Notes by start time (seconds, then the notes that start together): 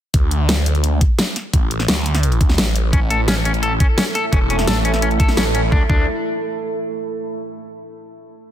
0.14 D2, kick, closed hi-hat
0.31 closed hi-hat
0.49 snare, closed hi-hat
0.66 closed hi-hat
0.75 closed hi-hat
0.84 closed hi-hat
1.01 kick, closed hi-hat
1.19 snare, closed hi-hat
1.36 snare, closed hi-hat
1.53 A1, kick, closed hi-hat
1.71 closed hi-hat
1.80 snare
1.88 D2, snare, closed hi-hat
2.06 closed hi-hat
2.15 snare, closed hi-hat
2.23 closed hi-hat
2.32 closed hi-hat
2.41 D2, kick, closed hi-hat
2.49 snare
2.58 A1, snare, closed hi-hat
2.76 closed hi-hat
2.93 A1 A3 C#4 E4 A4, kick, closed hi-hat
3.10 A4, closed hi-hat
3.28 C#4, snare, closed hi-hat
3.45 C#4, closed hi-hat
3.54 closed hi-hat
3.63 A4, closed hi-hat
3.80 C#4, kick, closed hi-hat
3.98 C#4, snare, closed hi-hat
4.15 A4, snare, closed hi-hat
4.33 E1 C#4, kick, closed hi-hat
4.50 C#4, closed hi-hat
4.59 snare
4.67 A1 A4, snare, closed hi-hat
4.85 C#4, closed hi-hat
4.94 snare, closed hi-hat
5.02 C#4, closed hi-hat
5.11 closed hi-hat
5.20 A4, kick, closed hi-hat
5.29 snare
5.37 A1 C#4, snare, closed hi-hat
5.55 C#4, closed hi-hat
5.72 D2 D4, kick
5.90 D2 D4, kick